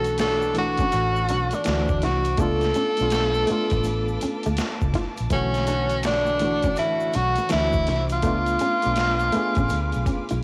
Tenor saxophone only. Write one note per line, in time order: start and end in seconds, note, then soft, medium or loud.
0.00 0.17 A4 loud
0.20 0.54 A4 loud
0.58 1.56 F#4 loud
1.54 2.03 D4 medium
2.04 2.41 F#4 medium
2.40 4.95 A4 loud
5.32 6.01 C#4 loud
6.06 6.74 D4 loud
6.78 7.17 E4 loud
7.15 7.51 F#4 loud
7.52 8.07 E4 loud
8.12 10.40 F4 loud